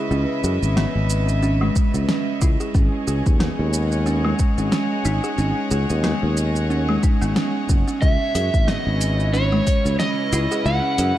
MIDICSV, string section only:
0, 0, Header, 1, 2, 480
1, 0, Start_track
1, 0, Key_signature, 4, "minor"
1, 0, Tempo, 659341
1, 79, Time_signature, 4, 2, 24, 8
1, 8140, End_track
2, 0, Start_track
2, 0, Title_t, "String section"
2, 0, Program_c, 0, 48
2, 0, Note_on_c, 0, 49, 80
2, 0, Note_on_c, 0, 61, 60
2, 0, Note_on_c, 0, 71, 69
2, 0, Note_on_c, 0, 75, 79
2, 0, Note_on_c, 0, 76, 78
2, 1997, Note_on_c, 0, 56, 89
2, 1998, Note_off_c, 0, 49, 0
2, 2000, Note_off_c, 0, 76, 0
2, 2052, Note_on_c, 0, 68, 79
2, 2097, Note_on_c, 0, 73, 86
2, 2336, Note_on_c, 0, 78, 70
2, 3531, Note_off_c, 0, 61, 0
2, 3546, Note_off_c, 0, 71, 0
2, 5834, Note_on_c, 0, 49, 82
2, 5838, Note_off_c, 0, 56, 0
2, 5838, Note_off_c, 0, 75, 0
2, 6053, Note_on_c, 0, 61, 73
2, 6281, Note_on_c, 0, 71, 77
2, 6439, Note_on_c, 0, 64, 81
2, 6864, Note_off_c, 0, 68, 0
2, 7247, Note_off_c, 0, 78, 0
2, 7391, Note_off_c, 0, 73, 0
2, 8140, Note_off_c, 0, 49, 0
2, 8140, Note_off_c, 0, 61, 0
2, 8140, Note_off_c, 0, 64, 0
2, 8140, Note_off_c, 0, 71, 0
2, 8140, End_track
0, 0, End_of_file